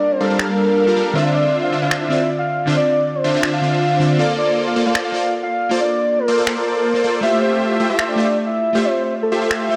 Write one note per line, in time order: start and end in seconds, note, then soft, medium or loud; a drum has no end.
0.00 0.86 G3 medium
0.00 1.17 A#3 medium
0.00 0.87 D4 medium
0.00 0.88 F4 medium
0.00 0.88 A#4 loud
0.00 0.13 D5 loud
0.11 0.40 C5 medium
0.20 0.28 G3 medium
0.20 0.28 D4 medium
0.20 0.28 A4 medium
0.20 0.28 A#4 medium
0.20 0.28 F5 loud
0.30 0.94 G3 medium
0.30 0.94 D4 medium
0.30 0.94 A4 medium
0.30 0.94 A#4 medium
0.30 0.94 F5 medium
0.39 finger snap medium
0.49 1.17 A#4 loud
0.86 0.94 G3 medium
0.86 0.94 D4 medium
0.86 0.94 F4 medium
0.86 0.95 A#4 medium
0.96 1.13 G3 medium
0.96 1.13 D4 medium
0.96 1.13 F4 medium
0.96 1.13 A4 medium
0.96 1.13 A#4 medium
0.96 1.14 A#4 medium
0.96 1.13 F5 loud
1.13 2.07 D3 medium
1.13 1.70 D3 medium
1.13 2.08 C4 medium
1.13 1.70 D4 medium
1.13 1.70 F4 medium
1.13 2.08 F4 medium
1.13 1.70 C5 medium
1.13 2.09 D5 medium
1.13 1.70 E5 loud
1.13 1.30 F5 loud
1.34 1.56 D5 loud
1.63 1.77 F5 medium
1.72 1.80 D3 loud
1.72 1.80 D4 medium
1.72 1.80 F4 medium
1.72 1.80 C5 medium
1.72 1.80 E5 loud
1.82 2.08 D3 medium
1.82 2.08 D4 medium
1.82 2.08 F4 medium
1.82 2.08 C5 medium
1.82 2.08 E5 medium
1.82 1.96 F5 medium
1.91 finger snap medium
2.01 2.30 E5 medium
2.08 2.64 D3 medium
2.08 2.19 D3 medium
2.08 2.65 C4 medium
2.08 2.19 D4 medium
2.08 2.19 F4 medium
2.08 2.65 F4 medium
2.08 2.19 C5 medium
2.08 2.66 D5 medium
2.08 2.19 E5 medium
2.39 2.68 F5 loud
2.65 3.59 D3 medium
2.65 2.75 D3 medium
2.65 3.60 C4 medium
2.65 2.75 D4 medium
2.65 2.76 F4 medium
2.65 3.60 F4 medium
2.65 2.75 C5 medium
2.65 2.76 E5 loud
2.69 3.61 D5 medium
2.77 3.16 D5 loud
3.15 3.44 C5 medium
3.24 3.32 D3 loud
3.24 3.32 D4 medium
3.24 3.32 F4 medium
3.24 3.32 C5 medium
3.24 3.32 E5 loud
3.34 4.17 D3 medium
3.34 4.17 D4 medium
3.34 4.17 F4 medium
3.34 4.17 C5 medium
3.34 4.17 E5 medium
3.43 finger snap loud
3.53 4.12 F5 loud
3.61 3.98 D3 medium
3.61 3.98 C4 medium
3.61 3.98 F4 medium
3.61 3.99 D5 medium
3.99 4.16 D3 medium
3.99 4.16 C4 medium
3.99 4.16 F4 medium
3.99 4.17 D5 medium
4.17 5.11 A#3 medium
4.17 4.74 A#3 medium
4.17 5.12 F4 medium
4.17 4.74 F4 medium
4.17 4.74 A4 medium
4.17 5.12 A4 medium
4.17 4.74 C5 medium
4.17 4.74 D5 loud
4.17 4.34 F5 loud
4.21 5.13 D5 medium
4.38 4.60 D5 medium
4.67 4.81 F5 medium
4.76 4.83 A#3 loud
4.76 4.83 F4 medium
4.76 4.83 A4 medium
4.76 4.83 C5 medium
4.76 4.83 D5 loud
4.86 5.12 A#3 medium
4.86 5.12 F4 medium
4.86 5.12 A4 medium
4.86 5.12 C5 medium
4.86 5.12 D5 medium
4.86 5.00 F5 medium
4.95 finger snap loud
5.05 5.34 F5 medium
5.12 5.68 A#3 medium
5.12 5.22 A#3 medium
5.12 5.69 F4 medium
5.12 5.22 F4 medium
5.12 5.22 A4 medium
5.12 5.69 A4 medium
5.12 5.22 C5 medium
5.12 5.22 D5 medium
5.12 5.70 D5 medium
5.43 5.72 F5 loud
5.69 6.63 A#3 medium
5.69 5.79 A#3 medium
5.69 6.64 F4 medium
5.69 5.79 F4 medium
5.69 5.79 A4 medium
5.69 6.64 A4 medium
5.69 5.79 C5 medium
5.69 5.79 D5 loud
5.69 6.65 D5 medium
5.81 6.20 D5 loud
6.19 6.48 A#4 loud
6.28 6.35 A#3 loud
6.28 6.35 F4 medium
6.28 6.35 A4 medium
6.28 6.35 C5 medium
6.28 6.35 D5 loud
6.38 7.02 A#3 medium
6.38 7.02 F4 medium
6.38 7.02 A4 medium
6.38 7.02 C5 medium
6.38 7.02 D5 medium
6.47 finger snap medium
6.57 7.15 A#4 medium
6.94 7.01 A#3 medium
6.94 7.02 F4 medium
6.94 7.02 A4 medium
6.94 7.02 D5 medium
7.03 7.20 A#3 medium
7.03 7.21 A#3 medium
7.03 7.21 F4 medium
7.03 7.21 A4 medium
7.03 7.21 C5 medium
7.03 7.21 D5 loud
7.03 7.21 D5 medium
7.21 8.15 A3 medium
7.21 7.78 A3 medium
7.21 8.15 F4 medium
7.21 7.78 F4 medium
7.21 7.78 G4 medium
7.21 8.16 G4 medium
7.21 7.78 C5 medium
7.21 7.78 E5 loud
7.21 7.38 E5 loud
7.21 8.17 E5 medium
7.42 7.64 C5 medium
7.71 7.85 E5 medium
7.80 7.87 A3 loud
7.80 7.87 F4 medium
7.80 7.87 G4 medium
7.80 7.87 C5 medium
7.80 7.87 E5 loud
7.89 8.16 A3 medium
7.89 8.16 F4 medium
7.89 8.16 G4 medium
7.89 8.16 C5 medium
7.89 8.04 E5 medium
7.89 8.16 E5 medium
7.99 finger snap medium
8.08 8.38 D5 medium
8.16 8.72 A3 medium
8.16 8.26 A3 medium
8.16 8.72 F4 medium
8.16 8.26 F4 medium
8.16 8.26 G4 medium
8.16 8.73 G4 medium
8.16 8.26 C5 medium
8.16 8.26 E5 medium
8.20 8.74 E5 medium
8.46 8.86 E5 loud
8.73 9.67 A3 medium
8.73 8.83 A3 medium
8.73 9.67 F4 medium
8.73 8.83 F4 medium
8.73 8.83 G4 medium
8.73 9.68 G4 medium
8.73 8.83 C5 medium
8.73 8.83 E5 loud
8.77 9.69 E5 loud
8.85 9.14 C5 medium
9.22 9.52 A4 loud
9.32 9.39 A3 loud
9.32 9.39 F4 medium
9.32 9.39 G4 medium
9.32 9.39 C5 medium
9.32 9.39 E5 loud
9.42 9.76 A3 medium
9.42 9.76 F4 medium
9.42 9.76 G4 medium
9.42 9.76 C5 medium
9.42 9.76 E5 loud
9.51 finger snap medium
9.61 9.76 E5 loud
9.69 9.76 A3 medium
9.69 9.76 F4 medium
9.69 9.76 G4 medium
9.69 9.76 E5 medium